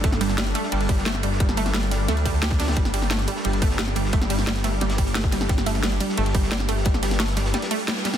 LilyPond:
<<
  \new Staff \with { instrumentName = "Synth drone" } { \time 4/4 \key c \dorian \tempo 4 = 176 << { a'1~ | a'1 | g'1~ | g'1~ |
g'1~ | g'1 | } \\ { <g d'>1~ | <g d'>1~ | <g d'>1~ | <g d'>1~ |
<g d'>1~ | <g d'>1 | } >> }
  \new Staff \with { instrumentName = "Synth arpeggio sound" } { \clef bass \time 4/4 \key c \dorian a8 g8 g8 a8 g8 g8 a8 g8 | g8 a8 g8 g8 a8 g8 g'8 d'8 | g8 g8 a8 g8 g8 a8 g8 g8 | a8 g8 g8 a8 g8 g8 a8 g8 |
g8 a8 g8 g8 a8 g8 g8 a8 | g8 g8 a8 g8 g8 a8 g8 g8 | }
  \new Staff \with { instrumentName = "Detuned saw bass" } { \clef bass \time 4/4 \key c \dorian g,,4. r8 g,,4 g,,8 g,,8~ | g,,2 d,4 d,4 | g,,4. r8 g,,4 g,,8 g,,8~ | g,,2 g,,4 g,,8 g,,8 |
g,,4. r8 g,,4 g,,8 g,,8~ | g,,2 r2 | }
  \new DrumStaff \with { instrumentName = "Drums" } \drummode { \time 4/4 <hh bd>16 <hh sn>16 <hh cymr>16 sn16 <hh sn>16 hh16 <hh cymr>16 sn16 <hh hho>16 hh16 <hh bd cymr>16 sn16 <hh sn>16 sn16 <hh cymr>16 sn16 | <hh bd>16 sn16 <hh cymr>16 <hh sn>16 <hh sn>16 hh16 <hh cymr sn>8 <hh sn>16 hh16 <hh bd cymr>16 hh16 <hh sn>16 <hh bd>16 <hh cymr sn>32 <hh sn>32 <hh sn>32 <hh sn>32 | <hh bd>16 <hh sn>16 <hh cymr>16 sn16 <hh sn>16 hh16 <hh cymr>16 sn16 <hh hho>16 hh16 <hh bd cymr>16 sn16 <hh sn>16 sn16 <hh cymr>16 sn16 | <hh bd>16 sn16 <hh hho cymr>16 sn16 <hh sn>16 <hh sn>16 <hh cymr sn>8 <hh sn>16 <hh sn>16 <hh bd cymr>16 hh16 <hh sn>16 bd16 <hh cymr sn>16 sn16 |
<hh bd>16 <hh sn>16 <hh cymr>16 sn16 <hh sn>16 hh16 <hh cymr>16 sn16 <hh hho>16 hh16 <hh bd cymr>16 sn16 <hh sn>16 sn16 <hh cymr>16 sn16 | <hh bd>16 sn16 <hh cymr sn>16 <hh sn>16 <hh sn>16 <hh sn>16 <hh cymr sn>16 <hh sn>16 <hh sn>16 <hh sn>16 <hh cymr>16 hh16 <hh sn>16 <hh sn>16 <hh cymr sn>16 <hh sn>16 | }
>>